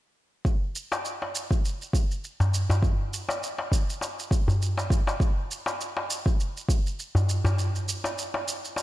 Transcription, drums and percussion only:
0.45 kick loud
0.45 shaker soft
0.76 shaker medium
0.92 darbuka ka soft
0.92 darbuka tek medium
0.92 shaker soft
1.05 shaker soft
1.22 darbuka tek medium
1.35 shaker medium
1.51 kick medium
1.51 shaker soft
1.65 shaker soft
1.82 shaker soft
1.93 kick medium
1.93 shaker medium
2.11 shaker soft
2.24 shaker soft
2.40 darbuka ka medium
2.40 darbuka dum medium
2.40 shaker soft
2.54 shaker medium
2.70 darbuka tek medium
2.70 darbuka dum medium
2.70 shaker soft
2.82 kick loud
2.82 shaker soft
3.13 shaker medium
3.29 darbuka ka soft
3.29 darbuka tek medium
3.29 shaker soft
3.43 shaker soft
3.58 darbuka tek medium
3.72 kick medium
3.72 shaker medium
3.90 shaker soft
4.01 darbuka tek medium
4.01 shaker soft
4.19 shaker soft
4.31 kick medium
4.31 darbuka ka soft
4.31 shaker medium
4.48 darbuka dum medium
4.48 shaker soft
4.62 shaker soft
4.78 darbuka tek medium
4.78 shaker soft
4.90 kick medium
4.90 shaker medium
5.07 darbuka tek medium
5.07 shaker soft
5.20 kick loud
5.20 shaker soft
5.51 shaker medium
5.66 darbuka ka soft
5.66 darbuka tek medium
5.66 shaker soft
5.81 shaker soft
5.97 darbuka tek medium
6.10 shaker medium
6.26 kick loud
6.26 shaker soft
6.40 shaker soft
6.57 shaker soft
6.69 kick loud
6.69 shaker medium
6.87 shaker soft
6.99 shaker soft
7.15 darbuka ka medium
7.15 darbuka dum medium
7.15 shaker soft
7.29 shaker medium
7.45 darbuka tek medium
7.45 darbuka dum medium
7.45 shaker soft
7.59 shaker soft
7.75 shaker soft
7.89 shaker medium
8.04 darbuka ka soft
8.04 darbuka tek medium
8.04 shaker soft
8.18 shaker soft
8.34 darbuka tek medium
8.48 shaker medium
8.65 shaker soft
8.76 darbuka tek medium
8.76 shaker soft

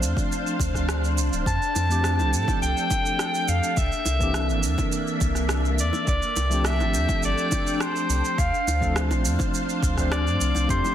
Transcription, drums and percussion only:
0.03 shaker medium
0.17 kick loud
0.17 shaker soft
0.32 shaker soft
0.47 shaker soft
0.60 kick loud
0.60 shaker medium
0.74 kick medium
0.74 cross-stick soft
0.74 shaker soft
0.89 cross-stick medium
0.89 shaker soft
1.04 shaker soft
1.18 shaker medium
1.33 shaker soft
1.46 kick loud
1.46 shaker soft
1.62 shaker soft
1.76 high bongo medium
1.76 shaker medium
1.91 shaker soft
2.04 cross-stick medium
2.04 shaker soft
2.19 high bongo medium
2.19 shaker soft
2.34 shaker medium
2.48 kick loud
2.48 high bongo medium
2.48 shaker soft
2.63 shaker soft
2.77 shaker soft
2.91 kick loud
2.91 high bongo medium
2.91 shaker medium
3.06 shaker soft
3.19 cross-stick medium
3.19 shaker soft
3.35 shaker soft
3.48 shaker medium
3.64 shaker soft
3.77 kick loud
3.77 shaker soft
3.92 shaker soft
4.05 high bongo medium
4.05 shaker medium
4.21 kick medium
4.21 shaker soft
4.34 cross-stick medium
4.34 shaker soft
4.50 shaker soft
4.63 shaker medium
4.78 kick loud
4.78 high bongo medium
4.78 shaker soft
4.92 shaker soft
5.07 shaker soft
5.21 kick loud
5.21 shaker medium
5.35 cross-stick soft
5.35 shaker soft
5.49 cross-stick medium
5.49 shaker soft
5.65 shaker soft
5.79 shaker medium
5.93 high bongo medium
5.93 shaker soft
6.07 kick loud
6.07 shaker soft
6.22 shaker soft
6.36 high bongo medium
6.36 shaker medium
6.52 shaker soft
6.65 cross-stick medium
6.65 shaker soft
6.80 high bongo medium
6.80 shaker soft
6.94 shaker medium
7.09 kick loud
7.09 high bongo medium
7.09 shaker soft
7.23 shaker soft
7.38 shaker soft
7.51 kick loud
7.51 high bongo medium
7.51 shaker medium
7.67 shaker soft
7.80 cross-stick medium
7.80 shaker soft
7.96 shaker soft
8.10 shaker medium
8.25 shaker soft
8.38 kick loud
8.38 shaker soft
8.54 shaker soft
8.68 high bongo soft
8.68 shaker medium
8.82 kick medium
8.82 shaker soft
8.96 cross-stick medium
8.96 shaker soft
9.11 high bongo medium
9.11 shaker soft
9.25 shaker medium
9.39 kick loud
9.39 high bongo medium
9.39 shaker soft
9.54 shaker soft
9.69 shaker soft
9.83 kick loud
9.83 shaker medium
9.97 kick medium
9.97 cross-stick soft
9.97 shaker soft
10.12 cross-stick loud
10.12 shaker soft
10.27 shaker soft
10.41 shaker medium
10.55 high bongo medium
10.55 shaker soft
10.69 kick loud
10.69 shaker soft
10.84 high bongo medium
10.84 shaker soft

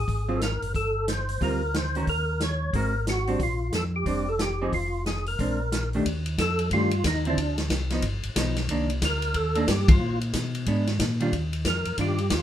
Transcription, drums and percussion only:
0.08 kick soft
0.08 open hi-hat soft
0.41 snare medium
0.41 closed hi-hat medium
0.62 open hi-hat soft
0.75 kick soft
0.75 open hi-hat soft
1.08 snare medium
1.08 closed hi-hat soft
1.29 open hi-hat soft
1.41 kick soft
1.41 open hi-hat soft
1.74 snare medium
1.74 closed hi-hat medium
1.95 open hi-hat soft
2.07 kick soft
2.07 open hi-hat soft
2.40 snare medium
2.40 closed hi-hat soft
2.73 kick soft
2.73 open hi-hat soft
3.07 snare medium
3.07 closed hi-hat soft
3.27 open hi-hat soft
3.40 kick soft
3.40 open hi-hat soft
3.72 snare medium
3.72 closed hi-hat soft
4.06 kick soft
4.06 open hi-hat soft
4.39 snare medium
4.39 closed hi-hat soft
4.73 kick soft
4.73 open hi-hat soft
5.06 snare medium
5.06 closed hi-hat soft
5.26 open hi-hat soft
5.39 kick soft
5.39 open hi-hat soft
5.72 snare medium
5.72 closed hi-hat medium
5.93 open hi-hat soft
6.05 kick soft
6.05 ride medium
6.26 ride soft
6.38 kick soft
6.38 snare medium
6.38 hi-hat pedal soft
6.38 ride medium
6.59 ride soft
6.71 kick soft
6.71 ride soft
6.91 ride soft
7.04 kick soft
7.04 snare medium
7.04 hi-hat pedal medium
7.04 ride medium
7.25 ride soft
7.37 kick soft
7.37 ride medium
7.58 snare medium
7.58 ride soft
7.70 kick soft
7.70 snare medium
7.70 hi-hat pedal soft
7.70 ride medium
7.90 snare soft
7.90 ride soft
8.02 kick soft
8.02 ride medium
8.23 ride soft
8.36 kick soft
8.36 snare medium
8.36 hi-hat pedal medium
8.36 ride medium
8.56 snare soft
8.56 ride soft
8.69 kick soft
8.69 ride medium
8.90 ride soft
9.02 kick soft
9.02 snare medium
9.02 hi-hat pedal medium
9.02 ride medium
9.22 ride soft
9.34 kick soft
9.34 ride medium
9.55 ride soft
9.68 kick soft
9.68 snare medium
9.68 hi-hat pedal medium
9.68 ride medium
9.88 kick medium
9.88 ride medium
10.21 ride soft
10.33 kick soft
10.33 snare medium
10.33 hi-hat pedal medium
10.33 ride medium
10.55 ride soft
10.66 kick soft
10.66 ride medium
10.87 snare soft
10.87 ride soft
11.00 kick soft
11.00 snare medium
11.00 hi-hat pedal medium
11.00 ride medium
11.20 ride soft
11.32 kick soft
11.32 ride medium
11.53 ride soft
11.65 kick soft
11.65 snare medium
11.65 hi-hat pedal medium
11.65 ride medium
11.85 ride soft
11.98 kick soft
11.98 ride medium
12.18 ride soft
12.30 kick soft
12.30 snare medium
12.30 hi-hat pedal medium
12.30 ride medium

